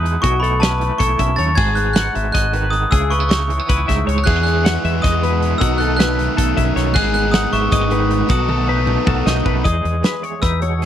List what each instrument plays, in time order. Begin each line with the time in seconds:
Already playing: fingered electric bass E2, clean electric guitar E2 B2 E3 D#4 F#4 B4, glockenspiel D#6
0.04 clean electric guitar G#3, closed hi-hat
0.22 fingered electric bass B1, clean electric guitar B2 E4 F#4, glockenspiel C#6, kick, closed hi-hat
0.40 clean electric guitar A3 A4, glockenspiel B5
0.44 closed hi-hat
0.60 clean electric guitar C#4 B4, glockenspiel A5, snare, closed hi-hat
0.80 clean electric guitar E3 A3, closed hi-hat
0.98 fingered electric bass B1, clean electric guitar E4 A4, glockenspiel C#6, kick, closed hi-hat
1.19 fingered electric bass B1, clean electric guitar F#2 C#4 E5, kick, closed hi-hat
1.36 fingered electric bass D#2, clean electric guitar A3 C#5, glockenspiel A6, closed hi-hat
1.55 fingered electric bass G#1, clean electric guitar G#2 F#4 G#4, glockenspiel G#6, kick, crash
1.75 clean electric guitar B3, glockenspiel F#6, closed hi-hat
1.93 clean electric guitar D#4 F#5, glockenspiel F#6, snare, closed hi-hat
2.15 fingered electric bass G#1, clean electric guitar G#3 B3 E5, closed hi-hat
2.32 fingered electric bass G#1, clean electric guitar F#4 D#5, glockenspiel F#6, kick, snare, closed hi-hat
2.53 clean electric guitar D#3 D#4 B4, closed hi-hat
2.71 clean electric guitar B3, glockenspiel D#6, closed hi-hat
2.91 fingered electric bass C#2, clean electric guitar C#3 E4 G#4, glockenspiel E6, kick, closed hi-hat
3.10 clean electric guitar G#3 B4, glockenspiel C#6, closed hi-hat
3.20 clean electric guitar B3
3.29 clean electric guitar D#4 C#5, glockenspiel C#6, snare, closed hi-hat
3.49 clean electric guitar E3 G#3, closed hi-hat
3.59 clean electric guitar B3
3.69 fingered electric bass C#2, clean electric guitar E4 B4, kick, closed hi-hat
3.88 fingered electric bass C#2, clean electric guitar G#2 D#4 E5, kick, snare, closed hi-hat
4.07 fingered electric bass C#2, clean electric guitar G#3 C#5, closed hi-hat
4.18 clean electric guitar B3
4.24 clean electric guitar E2 E4 G#4, fingered electric bass E2, overdriven electric guitar E3 G#3 B3, glockenspiel F#6, kick, crash
4.28 overdriven electric guitar E4 G#4
4.36 clean electric guitar F#4
4.43 clean electric guitar G#3, glockenspiel F#6, closed hi-hat
4.65 clean electric guitar F#5, snare, closed hi-hat
4.84 fingered electric bass E2, clean electric guitar G#3 E5, closed hi-hat
5.02 fingered electric bass E2, clean electric guitar F#4 D#5, glockenspiel D#6, kick, snare, closed hi-hat
5.23 clean electric guitar B2 B4, closed hi-hat
5.42 clean electric guitar G#3, closed hi-hat
5.58 fingered electric bass B1, overdriven electric guitar B2 D#3 F#3, clean electric guitar B2 F#4, glockenspiel E6, kick, closed hi-hat
5.62 overdriven electric guitar B3 D#4 A4
5.78 clean electric guitar A3 A4, glockenspiel F#6, closed hi-hat
5.97 clean electric guitar C#4 B4, glockenspiel F#6, snare, closed hi-hat
6.18 clean electric guitar A3, closed hi-hat
6.37 fingered electric bass B1, clean electric guitar A4, kick, closed hi-hat
6.57 fingered electric bass B1, clean electric guitar F#2 C#4 E5, kick, closed hi-hat
6.76 fingered electric bass B1, clean electric guitar A3 C#5, snare, closed hi-hat
6.94 fingered electric bass G#1, overdriven electric guitar G#2 D#3 G#3 B3 D#4 G#4, clean electric guitar G#2 F#4 G#4, glockenspiel F#6, kick, crash
7.14 clean electric guitar B3, glockenspiel F#6, closed hi-hat
7.32 clean electric guitar D#4 F#5, glockenspiel D#6, snare, closed hi-hat
7.53 fingered electric bass G#1, clean electric guitar G#3 B3 E5, glockenspiel C#6, snare, closed hi-hat
7.72 fingered electric bass G#1, clean electric guitar E4 D#5, glockenspiel D#6, kick, closed hi-hat
7.81 clean electric guitar F#4
7.91 clean electric guitar D#3 D#4 B4, closed hi-hat
8.11 clean electric guitar B3, closed hi-hat
8.28 fingered electric bass B1, overdriven electric guitar B2 D#3 F#3 B3 D#4 A4, clean electric guitar B2 F#4, glockenspiel D#6, kick, closed hi-hat
8.48 clean electric guitar A3 A4, high tom
8.68 clean electric guitar D#4 B4
8.87 clean electric guitar F#3 A3, mid tom
9.06 fingered electric bass B1, clean electric guitar F#4 A4, kick, mid tom
9.26 fingered electric bass B1, clean electric guitar F#2 D#4 D#5, snare
9.45 fingered electric bass B1, clean electric guitar A3 B4, kick
9.64 clean electric guitar E2 G#3 D#4 G#4 D#5, fingered electric bass E2, glockenspiel D#6, kick, closed hi-hat
9.85 fingered electric bass E2, closed hi-hat
10.04 clean electric guitar E3 B4, snare, closed hi-hat
10.23 clean electric guitar C#5, closed hi-hat
10.42 fingered electric bass E2, clean electric guitar D#4 B4, glockenspiel E6, kick, snare, closed hi-hat
10.62 clean electric guitar B2 C#5, closed hi-hat
10.82 clean electric guitar G#4, closed hi-hat